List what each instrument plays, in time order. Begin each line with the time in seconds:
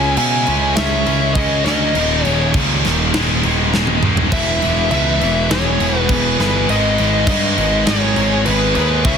Already playing: picked electric bass C#2, distorted electric guitar C#3 G#3 C#4 E4 G#4, lead electric guitar E5 G#5
0.15 picked electric bass B2, distorted electric guitar C#3 G#3 C#4, lead electric guitar E5 G#5, crash
0.47 picked electric bass C#2, distorted electric guitar C#3 G#3 C#4, crash
0.75 picked electric bass C#2, distorted electric guitar C#3 G#3 C#4, lead electric guitar C#5 E5, snare, crash
1.06 picked electric bass C#2, distorted electric guitar C#3 G#3 C#4, crash
1.34 picked electric bass C#2, distorted electric guitar C#3 G#3 C#4, lead electric guitar G#4 D#5, kick, crash
1.64 picked electric bass D2, distorted electric guitar C#3 G#3 C#4 E4 G#4, lead electric guitar A#4 D#5, snare, crash
1.95 picked electric bass D#1, distorted electric guitar D#2 A#2 D#3 G3 A#3 D#4, crash
2.25 picked electric bass D#1, distorted electric guitar D#2 A#2 D#3, lead electric guitar G#4 C#5, crash
2.54 picked electric bass C#2, distorted electric guitar D#2 A#2 D#3, kick, crash
2.84 picked electric bass D#1, distorted electric guitar D#2 A#2 D#3, snare, crash
3.14 picked electric bass D#1, distorted electric guitar G#2 D#3 G#3 B3 D#4, snare, crash
3.43 picked electric bass D#1, distorted electric guitar G#2 D#3 G#3, crash
3.74 picked electric bass D#1, distorted electric guitar G#2 D#3 G#3, snare
3.87 high tom
4.03 picked electric bass D#1, distorted electric guitar G#2 D#3 G#3, mid tom
4.17 floor tom
4.32 picked electric bass E1, distorted electric guitar E2 B2 E3 G#3 B3 E4, lead electric guitar B4 E5, kick, crash
4.62 picked electric bass E1, distorted electric guitar E2 B2 E3, crash
4.91 picked electric bass C#2, distorted electric guitar E2 B2 E3, lead electric guitar B4 E5, crash
5.21 picked electric bass E1, distorted electric guitar E2 B2 E3, crash
5.51 picked electric bass E1, distorted electric guitar E2 B2 E3, lead electric guitar G#4 C#5, snare, crash
5.80 picked electric bass E1, distorted electric guitar E2 B2 E3, crash
5.94 lead electric guitar F#4 B4
6.09 picked electric bass E1, distorted electric guitar E2 B2 E3, lead electric guitar G#4 B4, kick, crash
6.39 picked electric bass G1, distorted electric guitar E2 B2 E3 G#3 B3 E4, lead electric guitar G#4 B4, snare, crash
6.69 picked electric bass G#1, distorted electric guitar G#2 D#3 G#3 B3 D#4, lead electric guitar B4 D#5, crash
6.98 picked electric bass G#1, distorted electric guitar G#2 D#3 G#3, crash
7.27 picked electric bass G2, distorted electric guitar G#2 D#3 G#3, lead electric guitar B4 D#5, kick, crash
7.58 picked electric bass G#1, distorted electric guitar G#2 D#3 G#3, crash
7.87 picked electric bass G#1, distorted electric guitar G#2 D#3 G#3, lead electric guitar G#4 C#5, snare, crash
8.16 picked electric bass G#1, distorted electric guitar G#2 D#3 G#3, crash
8.46 picked electric bass G#1, distorted electric guitar G#2 D#3 G#3, lead electric guitar G#4 B4, crash
8.75 picked electric bass D#2, distorted electric guitar G#2 D#3 G#3 B3 D#4, lead electric guitar G#4 B4, crash
9.05 picked electric bass C#2, distorted electric guitar C#3 G#3 C#4 E4 G#4, lead electric guitar C#5 E5, kick, crash